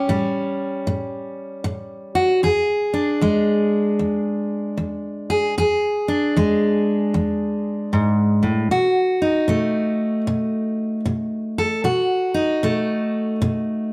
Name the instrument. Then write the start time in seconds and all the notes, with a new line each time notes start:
steel-string acoustic guitar
Already playing: C#4 G4
0.09 A2 G3
0.87 A2
1.64 A2
2.15 F#4
2.43 E2 G#4
2.94 D4
3.21 E2 G#3
3.99 E2
4.77 E2
5.30 G#4
5.58 E2 G#4
6.08 D4
6.37 E2 G#3
7.14 E2
7.93 G#2
8.43 A2
8.71 B2 F#4
9.22 D#4
9.48 B2 A3
10.27 B2
11.06 B2
11.58 A4
11.84 B2 F#4
12.34 D#4
12.63 B2 A3
13.42 B2